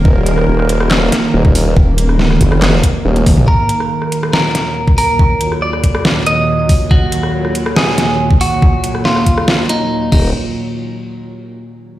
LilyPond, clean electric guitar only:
\new Staff \with { instrumentName = "Clean electric guitar" } { \time 4/4 \key ees \minor \tempo 4 = 140 r1 | r1 | bes'2 bes'4. bes'8~ | bes'4 d''4. ees''4. |
ges'2 aes'4. ges'8~ | ges'4 f'4. ees'4 ees'8 | r1 | }